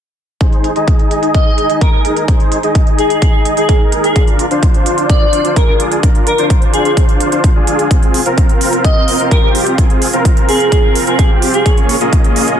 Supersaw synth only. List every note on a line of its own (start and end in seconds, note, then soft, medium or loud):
0.41 0.70 D#4 medium
0.41 0.70 G#4 medium
0.41 0.70 C5 medium
0.76 1.67 D#4 medium
0.76 1.67 G#4 medium
0.76 1.67 D#5 loud
1.70 1.80 D#4 medium
1.70 1.80 G#4 medium
1.70 1.80 D#5 loud
1.81 2.25 D#4 medium
1.81 2.25 G#4 medium
1.81 2.25 A#4 medium
2.28 2.57 D#4 medium
2.28 2.57 G#4 medium
2.28 2.57 C5 medium
2.63 3.54 D#4 medium
2.63 3.54 G#4 medium
2.63 3.54 D#5 loud
3.57 3.67 D#4 medium
3.57 3.67 G#4 medium
3.57 3.67 D#5 loud
3.69 4.13 D#4 medium
3.69 4.13 G#4 medium
3.69 4.13 A#4 medium
4.16 4.45 D4 medium
4.16 4.45 F4 medium
4.16 4.45 A#4 medium
4.51 5.42 D4 loud
4.51 5.42 F4 medium
4.51 5.42 C5 loud
5.45 5.55 D4 medium
5.45 5.55 F4 medium
5.45 5.55 C5 loud
5.56 6.00 D4 medium
5.56 6.00 F4 medium
5.56 6.00 G#4 medium
6.03 6.32 D4 medium
6.03 6.32 F4 medium
6.03 6.32 A#4 medium
6.38 7.29 D4 medium
6.38 7.29 F4 medium
6.38 7.29 C5 loud
7.32 7.50 D4 medium
7.32 7.50 F4 medium
7.32 7.50 C5 medium
7.56 7.88 D4 medium
7.56 7.88 F4 medium
7.56 7.88 G#4 loud
7.91 8.20 C4 medium
7.91 8.20 F4 medium
7.91 8.20 G#4 medium
8.26 9.17 C4 medium
8.26 9.17 F4 medium
8.26 9.17 A#4 loud
9.20 9.30 C4 medium
9.20 9.30 F4 medium
9.20 9.30 A#4 loud
9.31 9.75 C4 medium
9.31 9.75 F4 medium
9.31 9.75 G4 medium
9.78 10.07 C4 medium
9.78 10.07 F4 medium
9.78 10.07 G#4 medium
10.13 11.04 C4 medium
10.13 11.04 F4 medium
10.13 11.04 A#4 loud
11.07 11.17 C4 medium
11.07 11.17 F4 medium
11.07 11.17 A#4 loud
11.19 11.63 C4 medium
11.19 11.63 F4 medium
11.19 11.63 G4 medium
11.66 11.95 A#3 medium
11.66 11.95 C#4 medium
11.66 11.95 F4 medium
11.66 11.95 G#4 medium
11.66 11.95 C#5 medium
12.01 12.60 A#3 medium
12.01 12.60 C#4 medium
12.01 12.60 F4 medium
12.01 12.60 G#4 medium
12.01 12.60 D#5 loud